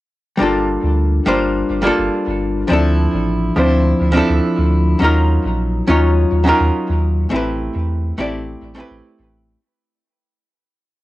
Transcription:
0.37 sub bass G1, hollow-body jazz guitar G3 A#3 D4 F4
0.42 hollow-body jazz guitar A4
0.83 sub bass D2
1.26 sub bass G1, hollow-body jazz guitar G3 A#3 D4 F4 C5
1.69 sub bass G1
1.82 hollow-body jazz guitar G3 A#3 D4 F4
1.87 hollow-body jazz guitar A4
1.99 sub bass G1
2.27 sub bass G1
2.68 sub bass D2, hollow-body jazz guitar F3 C4 D4
2.72 hollow-body jazz guitar E4 A4
3.14 sub bass A1
3.56 sub bass D2, hollow-body jazz guitar F3 C4 D4 E4 C5
4.00 sub bass D2
4.12 hollow-body jazz guitar F3 C4 D4 E4
4.17 hollow-body jazz guitar A4
4.29 sub bass D2
4.58 sub bass D2
4.99 sub bass D#2, hollow-body jazz guitar F#3 C#4 D#4
5.03 hollow-body jazz guitar F4 A#4
5.45 sub bass A#1
5.87 sub bass D#2, hollow-body jazz guitar F#3 C#4 D#4 F4 C#5
6.32 sub bass D#2
6.44 hollow-body jazz guitar F#3 C#4 D#4 F4
6.49 hollow-body jazz guitar A#4
6.60 sub bass D#2
6.89 sub bass D#2
7.30 sub bass A1, hollow-body jazz guitar A3 C4 E4 G4
7.36 hollow-body jazz guitar B4
7.75 sub bass E2
8.18 sub bass A1, hollow-body jazz guitar A3 C4 E4 G4 D5
8.62 sub bass A1
8.75 hollow-body jazz guitar A3 C4 E4 G4
8.80 hollow-body jazz guitar B4
8.90 sub bass A1
9.19 sub bass A1

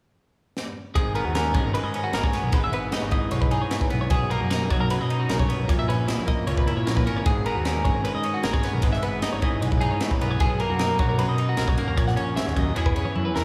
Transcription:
0.57 snare
0.95 fingered electric bass G#1, clean electric guitar G#2 G#4, kick, ride
1.15 clean electric guitar B3 A#4, ride
1.24 fingered electric bass D#2, clean electric guitar F#4
1.35 clean electric guitar C#4 A#4, snare, ride
1.54 fingered electric bass G#1, clean electric guitar G#3 C#5, kick, ride
1.64 clean electric guitar A#4
1.74 clean electric guitar D#3 B4, ride
1.83 fingered electric bass G#2, clean electric guitar D#5
1.94 clean electric guitar C#4, ride
2.04 clean electric guitar F#4
2.12 fingered electric bass G#1, clean electric guitar G#3 A#4, snare, ride
2.23 clean electric guitar C#5, kick
2.33 clean electric guitar B3, snare, ride
2.42 fingered electric bass B1, clean electric guitar A#4
2.52 fingered electric bass G#1, clean electric guitar G#2 B4, kick, ride
2.64 clean electric guitar E5
2.72 fingered electric bass G#1, clean electric guitar B3 B4, ride
2.92 clean electric guitar D#4 D#5, snare, ride
3.02 fingered electric bass G#1, clean electric guitar C#5
3.11 clean electric guitar E3 D#5, kick, ride
3.31 fingered electric bass B1, clean electric guitar G#2 C#5, ride
3.41 clean electric guitar B4, kick
3.51 clean electric guitar D#4 G#4, ride
3.61 fingered electric bass G#2, clean electric guitar C#5
3.71 clean electric guitar E3, snare, ride
3.81 clean electric guitar B4, kick
3.90 fingered electric bass B1, clean electric guitar B3 A#4, ride
4.01 clean electric guitar C#5
4.10 fingered electric bass B1, clean electric guitar B2 G#4, kick, ride
4.30 clean electric guitar A#3 A#4, ride
4.41 fingered electric bass F#2, clean electric guitar F#4
4.50 clean electric guitar D#4 A#4, snare, ride
4.70 fingered electric bass B1, clean electric guitar F#3 C#5, kick, ride
4.81 clean electric guitar A#4
4.90 clean electric guitar F#2 B4, ride
5.00 fingered electric bass B2, clean electric guitar D#5
5.10 clean electric guitar D#4, ride
5.20 clean electric guitar F#4
5.29 fingered electric bass B1, clean electric guitar C#3 A#4, snare, ride
5.39 clean electric guitar C#5, kick
5.48 clean electric guitar B2, ride
5.59 fingered electric bass B1, clean electric guitar A#4
5.68 fingered electric bass A#1, clean electric guitar A#2 C#5, kick, ride
5.79 clean electric guitar E5
5.88 fingered electric bass A#1, clean electric guitar C#4 B4, ride
6.08 clean electric guitar E4 D#5, snare, ride
6.17 fingered electric bass A#1, clean electric guitar C#5
6.27 clean electric guitar A#3 D#5, kick, ride
6.47 fingered electric bass C#2, clean electric guitar A#2 C#5, ride
6.57 clean electric guitar B4, kick
6.67 clean electric guitar E4 A#4, ride
6.77 fingered electric bass A#2, clean electric guitar C#5
6.86 fingered electric bass A#1, clean electric guitar A#3, snare, ride
6.97 clean electric guitar B4, kick
7.06 fingered electric bass G#1, clean electric guitar C#4 A#4, ride
7.17 clean electric guitar C#5
7.25 fingered electric bass G#1, clean electric guitar G#2 G#4, kick, ride
7.46 clean electric guitar B3 A#4, ride
7.55 fingered electric bass D#2, clean electric guitar F#4
7.65 clean electric guitar C#4 A#4, snare, ride
7.85 fingered electric bass G#1, clean electric guitar G#3 C#5, kick, ride
7.95 clean electric guitar A#4
8.05 clean electric guitar D#3 B4, ride
8.15 fingered electric bass G#2, clean electric guitar D#5
8.23 clean electric guitar C#4, ride
8.34 clean electric guitar F#4
8.43 fingered electric bass G#1, clean electric guitar G#3 A#4, snare, ride
8.53 clean electric guitar C#5, kick
8.63 clean electric guitar B3, snare, ride
8.73 fingered electric bass B1, clean electric guitar A#4
8.82 fingered electric bass G#1, clean electric guitar G#2 B4, kick, ride
8.93 clean electric guitar E5, snare
9.03 fingered electric bass G#1, clean electric guitar B3 B4, ride
9.22 clean electric guitar D#4 D#5, snare, ride
9.32 fingered electric bass G#1, clean electric guitar C#5
9.42 clean electric guitar E3 D#5, kick, ride
9.61 fingered electric bass B1, clean electric guitar G#2 C#5, ride
9.71 clean electric guitar B4, kick
9.81 clean electric guitar D#4 G#4, ride
9.91 fingered electric bass G#2, clean electric guitar C#5
10.01 clean electric guitar E3, snare, ride
10.11 clean electric guitar B4, kick
10.21 fingered electric bass B1, clean electric guitar B3 A#4, ride
10.31 clean electric guitar C#5
10.40 fingered electric bass B1, clean electric guitar B2 G#4, kick, ride
10.60 clean electric guitar A#3 A#4, ride
10.70 fingered electric bass F#2, clean electric guitar F#4
10.79 clean electric guitar D#4 A#4, snare, ride
10.99 fingered electric bass B1, clean electric guitar F#3 C#5, kick, ride
11.09 clean electric guitar A#4
11.18 clean electric guitar F#2 B4, ride
11.28 fingered electric bass B2, clean electric guitar D#5
11.38 clean electric guitar D#4, ride
11.49 clean electric guitar F#4
11.57 fingered electric bass B1, clean electric guitar F#3 A#4, snare, ride
11.68 clean electric guitar C#5, kick
11.78 clean electric guitar A#3, ride
11.87 fingered electric bass D#2, clean electric guitar A#4
11.97 fingered electric bass A#1, clean electric guitar A#2 C#5, kick, ride
12.07 clean electric guitar F#5, snare
12.16 fingered electric bass A#1, clean electric guitar C#4 C#5, ride
12.36 clean electric guitar G#2 E5, snare, ride
12.47 fingered electric bass D#2, clean electric guitar C#5, snare
12.56 clean electric guitar F#2 D#5, kick, ride
12.75 clean electric guitar E2 E3 C#4 E4 G#4 C#5, fingered electric bass E2, ride
12.86 clean electric guitar B4, kick
12.95 clean electric guitar C#4 G#4, ride
13.05 fingered electric bass E3, clean electric guitar C#5
13.16 fingered electric bass F#2, clean electric guitar E4, high tom
13.25 clean electric guitar B4
13.35 fingered electric bass E2, clean electric guitar E3 A#4, snare

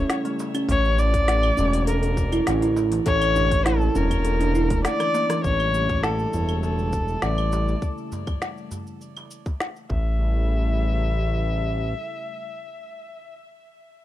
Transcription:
Already playing: analog synth pad C#3 G3 A3 E4, kamancheh C#5
0.10 snare, open hi-hat, shaker
0.25 kalimba A3, open hi-hat, shaker
0.39 darbuka tek, shaker
0.55 kalimba C#4, open hi-hat, claves, shaker
0.69 analog synth bass A1, analog synth pad D3, kalimba A3, kamancheh C#5, kick, open hi-hat, shaker
0.85 shaker
0.98 kalimba E3, kamancheh D5, darbuka ka, darbuka tek, shaker
1.14 kick, open hi-hat, darbuka dum, shaker
1.28 kalimba A3, snare, open hi-hat, shaker
1.43 claves, shaker
1.57 analog synth bass E1, kalimba C#4, darbuka dum, shaker
1.73 open hi-hat, darbuka ka, shaker
1.87 kalimba A4, kamancheh A#4, open hi-hat, darbuka tek, shaker
2.03 kalimba A4, open hi-hat, shaker
2.17 kick, shaker
2.32 kalimba E4, open hi-hat, claves, shaker
2.47 analog synth bass A1, snare, open hi-hat, shaker
2.62 kalimba E4, open hi-hat, shaker
2.76 darbuka ka, darbuka tek, shaker
2.92 kalimba E3, open hi-hat, darbuka ka, shaker
3.06 analog synth bass A1, analog synth pad A#3, kalimba A4, kamancheh C#5, kick, open hi-hat, shaker
3.22 open hi-hat, claves, shaker
3.36 kalimba D4, darbuka ka, darbuka tek, darbuka dum, shaker
3.51 kick, open hi-hat, darbuka dum, shaker
3.65 kalimba E4, kamancheh A4, snare, open hi-hat, shaker
3.82 shaker
3.95 analog synth bass E1, kalimba C#4, kamancheh A#4, darbuka ka, darbuka dum, shaker
4.11 kick, open hi-hat, darbuka ka, claves, shaker
4.25 analog synth bass E1, kalimba A4, open hi-hat, darbuka tek, shaker
4.41 kalimba D4, open hi-hat, darbuka tek, shaker
4.55 kalimba E4, shaker
4.70 kalimba A3, kick, open hi-hat, darbuka tek, shaker
4.84 kamancheh D5, cross-stick, snare, open hi-hat, shaker
5.00 kalimba E3, cross-stick, open hi-hat, claves, shaker
5.14 kalimba A#3, darbuka tek, shaker
5.30 kalimba E3, cross-stick, open hi-hat, shaker
5.44 analog synth bass A1, analog synth pad C#3 G3 A3 E4, kamancheh C#5, kick, shaker
5.60 claves, shaker
5.74 darbuka ka, darbuka tek, shaker
5.89 kick, darbuka dum, shaker
6.03 kamancheh A4, snare, shaker
6.19 shaker
6.33 analog synth bass E1, darbuka dum, shaker
6.49 darbuka ka, claves, shaker
6.63 kamancheh A4, darbuka tek, shaker
6.79 shaker
6.93 kick, shaker
7.08 shaker
7.22 analog synth bass A1, kamancheh D5, snare, shaker
7.38 claves, shaker
7.52 darbuka ka, darbuka tek, shaker
7.68 darbuka ka, shaker
7.82 kick, shaker
7.98 shaker
8.12 darbuka ka, darbuka tek, darbuka dum, shaker
8.27 kick, darbuka dum, claves, shaker
8.42 snare, shaker
8.58 shaker
8.71 darbuka ka, darbuka dum, shaker
8.87 shaker
9.01 shaker
9.17 darbuka tek, claves, shaker
9.31 shaker
9.46 kick, darbuka tek, shaker
9.60 snare, shaker
9.76 shaker
9.90 analog synth bass A1, analog synth pad C#3 G3 A3 E4, kamancheh E5, kick, darbuka tek

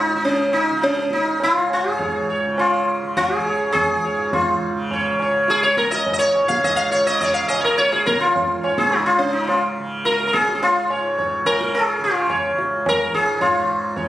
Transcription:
Already playing: tanpura C#2 G#2 C#3, sitar D#4
0.13 tanpura C#3, sitar D#4
0.22 sitar C#4, tabla tin
0.52 sitar D#4, tabla na
0.71 tanpura C#3
0.82 sitar C#4, tabla te
0.96 tabla te
1.11 sitar D#4, tabla ke
1.25 tabla te
1.29 tanpura C#2
1.40 sitar F4, tabla tin
1.70 sitar G#4, tabla na
1.87 tanpura G#2
1.99 sitar C#5, tabla tin, tabla ge
2.30 sitar C#5
2.46 tanpura C#3
2.58 sitar F4, tabla na
3.03 tanpura C#3
3.17 sitar F4, tabla na, tabla ge
3.36 sitar G#4
3.46 sitar C#5, tabla te
3.59 tanpura C#2
3.72 sitar G#4, tabla na, tabla ge
4.04 sitar C#5, tabla te
4.16 tanpura G#2
4.33 sitar F4, tabla tin, tabla ge
4.73 tanpura C#3
4.91 sitar C#5, tabla tin, tabla ge
5.20 sitar C#5, tabla na
5.30 tanpura C#3
5.48 sitar G#4, tabla te
5.63 sitar C#5, tabla te
5.77 sitar A#4, tabla ke
5.88 tanpura C#2, sitar D#5
5.92 tabla te
6.06 tabla tin, tabla ge
6.13 sitar D#5
6.19 sitar C#5
6.35 tabla na
6.43 tanpura G#2
6.48 sitar F5, tabla ke
6.64 sitar D#5, tabla tin, tabla ge
6.76 sitar F5
6.91 sitar C#5
7.00 tanpura C#3
7.07 sitar D#5
7.20 sitar C#5, tabla tin, tabla ge
7.34 sitar F5
7.48 sitar D#5, tabla na
7.55 tanpura C#3
7.60 sitar C#5
7.64 sitar A#4
7.78 sitar C#5, tabla te
7.92 sitar G#4, tabla te
8.06 sitar A#4, tabla ke
8.13 tanpura C#2
8.20 sitar F4, tabla te
8.36 tabla tin, tabla ge
8.63 sitar C#5, tabla na
8.68 tanpura G#2
8.78 sitar G#4, tabla ke
8.92 sitar D#4, tabla tin
9.06 sitar F4
9.18 sitar C#4
9.22 tanpura C#3
9.33 sitar D#4
9.47 sitar F4, tabla tin
9.78 tanpura C#3
10.05 sitar A#4, tabla te
10.20 tabla te
10.27 sitar A#4
10.33 tanpura C#2, sitar G#4, tabla ke
10.49 tabla te
10.55 sitar G#4
10.63 sitar F4, tabla tin
10.88 tanpura G#2, sitar C#5, tabla na
11.18 sitar C#5, tabla tin, tabla ge
11.44 tanpura C#3, sitar A#4, tabla na
11.61 tabla ke
11.74 sitar G#4, tabla na
11.99 tanpura C#3
12.04 sitar F4
12.30 sitar C#5, tabla na, tabla ge
12.55 tanpura C#2, tabla te
12.86 sitar A#4, tabla na, tabla ge
13.09 tanpura G#2
13.14 sitar G#4, tabla ge
13.41 tanpura G#2, sitar F4 C#5, tabla tin, tabla ge
13.96 tanpura C#3, sitar C#5, tabla tin, tabla ge

